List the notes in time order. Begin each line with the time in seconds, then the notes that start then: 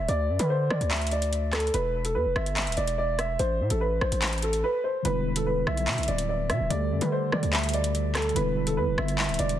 0.08 D2 D5, closed hi-hat
0.29 F#2
0.39 D3 B4, closed hi-hat
0.50 C5
0.70 D3 D5, cross-stick
0.81 D2, closed hi-hat
0.91 E5, clap, closed hi-hat
0.96 closed hi-hat
1.02 closed hi-hat
1.07 closed hi-hat
1.11 D5, closed hi-hat
1.22 closed hi-hat
1.33 closed hi-hat
1.53 A4, cross-stick, clap, closed hi-hat
1.60 closed hi-hat
1.67 closed hi-hat
1.74 E1 B4, closed hi-hat
2.05 A4, closed hi-hat
2.15 E2 B4
2.26 E1
2.36 G1 E5, cross-stick
2.46 closed hi-hat
2.57 E5, clap, closed hi-hat
2.62 closed hi-hat
2.67 D1, closed hi-hat
2.72 closed hi-hat
2.77 E1 D5, closed hi-hat
2.87 closed hi-hat
2.98 D5
3.19 E5, cross-stick, closed hi-hat
3.39 A1 C5, closed hi-hat
3.60 A2
3.70 A1 A4, closed hi-hat
3.81 B4
4.01 A1 C5, cross-stick
4.12 A1, closed hi-hat
4.22 clap, closed hi-hat
4.27 closed hi-hat
4.33 closed hi-hat
4.38 closed hi-hat
4.42 A4, closed hi-hat
4.53 closed hi-hat
4.64 B4
4.84 C5
5.03 E1 D3 G3 B3 E4 B4, closed hi-hat
5.07 B4
5.36 A4, closed hi-hat
5.46 B4
5.67 B1 E5, cross-stick
5.77 closed hi-hat
5.88 B2 E5, clap, closed hi-hat
5.93 closed hi-hat
5.98 B1, closed hi-hat
6.03 closed hi-hat
6.08 D1 D5, closed hi-hat
6.18 closed hi-hat
6.29 D5
6.50 B2 E5, cross-stick, closed hi-hat
6.60 D1
6.69 D2 D3 G3 A3 G4 D5, closed hi-hat
6.73 A4
6.91 F#2
7.01 D3 B4, closed hi-hat
7.12 C5
7.32 D3 D5, cross-stick
7.43 D2, closed hi-hat
7.53 E5, clap, closed hi-hat
7.58 closed hi-hat
7.64 closed hi-hat
7.69 closed hi-hat
7.74 D5, closed hi-hat
7.84 closed hi-hat
7.95 closed hi-hat
8.15 A4, cross-stick, clap, closed hi-hat
8.22 closed hi-hat
8.29 closed hi-hat
8.34 E1 D3 G3 B3 E4 B4, closed hi-hat
8.38 B4
8.67 A4, closed hi-hat
8.77 E2 B4
8.88 E1
8.98 G1 E5, cross-stick
9.08 closed hi-hat
9.19 E5, clap, closed hi-hat
9.24 closed hi-hat
9.29 D1, closed hi-hat
9.34 closed hi-hat
9.39 E1 D5, closed hi-hat
9.49 closed hi-hat